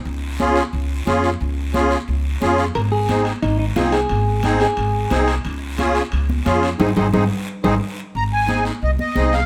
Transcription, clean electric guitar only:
X:1
M:4/4
L:1/8
Q:1/4=178
K:Ab
V:1 name="Clean electric guitar"
z8 | z8 | B A2 z E E F A- | A3 A4 z |
z8 | [EAc] [EAc] [EAc] z2 [EAc] z2 | z8 |]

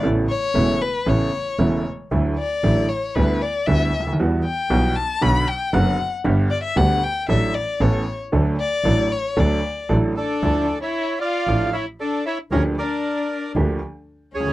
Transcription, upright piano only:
X:1
M:4/4
L:1/16
Q:1/4=116
K:D
V:1 name="Upright piano" clef=bass
[A,,,A,,C,A,B,E]2 z2 [E,,,E,,C,A,B,E]2 z2 [A,,,A,,C,A,B,E]2 z2 [E,,,E,,C,A,B,E]2 z2 | [D,,D,F,A,E]2 z2 [A,,,A,,D,F,A,E]2 z2 [D,,D,G,B,E]2 z2 [D,,D,G,B,E]2 z/2 C,,/2 D,,/2 _E,,/2 | [E,,E,G,B,F]2 z2 [B,,,B,,E,G,B,F]2 z2 [B,,,B,,D,F,B,F]2 z2 [F,,,F,,D,F,B,F]2 z2 | [G,,,G,,D,G,B,G]2 z2 [D,,D,G,B,G]2 z2 [A,,,A,,F,A,DA]2 z2 [A,,,A,,E,B,CA]2 z2 |
[D,,D,F,A,DA]2 z2 [A,,,A,,F,A,DA]2 z2 [D,,D,F,A,DA]2 z2 [A,,,A,,F,A,DA]2 z2 | [K:Dm] [D,,D,F,DEA]2 z6 [A,,,A,,F,DEA]2 z6 | [D,,D,F,B,DG]2 z6 [D,,D,F,B,DG]2 z4 z/2 ^C,,/2 D,,/2 z/2 |]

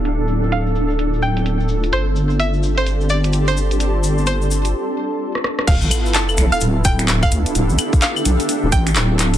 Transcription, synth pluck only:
X:1
M:4/4
L:1/16
Q:"Swing 16ths" 1/4=128
K:Ddor
V:1 name="Synth pluck"
z4 f2 z4 g2 z4 | c2 z2 e2 z c2 z d2 z c2 z | z4 c2 z8 z2 | f2 z2 a2 z f2 z g2 z f2 z |
z4 f2 z4 g2 z4 |]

